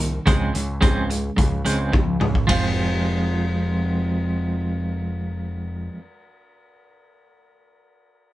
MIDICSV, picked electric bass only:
0, 0, Header, 1, 2, 480
1, 0, Start_track
1, 0, Key_signature, -4, "minor"
1, 0, Tempo, 554017
1, 233, Time_signature, 4, 2, 24, 8
1, 7217, End_track
2, 0, Start_track
2, 0, Title_t, "Picked electric bass"
2, 0, Program_c, 0, 34
2, 0, Note_on_c, 0, 36, 70
2, 158, Note_off_c, 0, 36, 0
2, 237, Note_on_c, 0, 37, 81
2, 437, Note_off_c, 0, 37, 0
2, 479, Note_on_c, 0, 37, 69
2, 678, Note_off_c, 0, 37, 0
2, 718, Note_on_c, 0, 37, 67
2, 1120, Note_off_c, 0, 37, 0
2, 1199, Note_on_c, 0, 37, 77
2, 1399, Note_off_c, 0, 37, 0
2, 1442, Note_on_c, 0, 37, 64
2, 1640, Note_off_c, 0, 37, 0
2, 1676, Note_on_c, 0, 37, 67
2, 1877, Note_off_c, 0, 37, 0
2, 1919, Note_on_c, 0, 37, 65
2, 2119, Note_off_c, 0, 37, 0
2, 2160, Note_on_c, 0, 29, 74
2, 5089, Note_off_c, 0, 29, 0
2, 7217, End_track
0, 0, End_of_file